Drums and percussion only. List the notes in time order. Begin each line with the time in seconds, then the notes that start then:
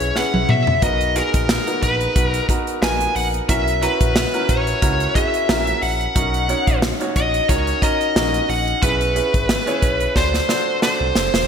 0.00 closed hi-hat
0.16 snare
0.34 high tom
0.49 mid tom
0.67 floor tom
0.82 kick, closed hi-hat
1.01 closed hi-hat
1.16 closed hi-hat
1.34 kick, closed hi-hat
1.49 snare
1.67 closed hi-hat
1.83 kick, closed hi-hat
2.01 closed hi-hat
2.16 kick, closed hi-hat
2.34 closed hi-hat
2.49 kick, closed hi-hat
2.67 closed hi-hat
2.83 snare
3.01 closed hi-hat
3.16 open hi-hat
3.34 closed hi-hat
3.49 kick, closed hi-hat
3.68 closed hi-hat
3.83 closed hi-hat
4.01 kick, closed hi-hat
4.16 snare
4.34 closed hi-hat
4.49 kick, closed hi-hat
4.67 closed hi-hat
4.82 kick, closed hi-hat
5.00 closed hi-hat
5.15 kick, closed hi-hat
5.34 closed hi-hat
5.49 snare
5.67 closed hi-hat
5.82 open hi-hat
6.01 closed hi-hat
6.16 kick, closed hi-hat
6.34 closed hi-hat
6.49 closed hi-hat
6.67 kick, closed hi-hat
6.82 snare
7.01 closed hi-hat
7.16 kick, closed hi-hat
7.34 closed hi-hat
7.49 kick, closed hi-hat
7.67 closed hi-hat
7.82 kick, closed hi-hat
8.01 closed hi-hat
8.16 snare
8.34 closed hi-hat
8.49 open hi-hat
8.68 closed hi-hat
8.83 kick, closed hi-hat
9.01 closed hi-hat
9.16 closed hi-hat
9.34 kick, closed hi-hat
9.49 snare
9.67 closed hi-hat
9.82 kick, closed hi-hat
10.00 closed hi-hat
10.16 kick, snare
10.34 snare
10.49 snare
10.82 snare
11.15 snare
11.34 snare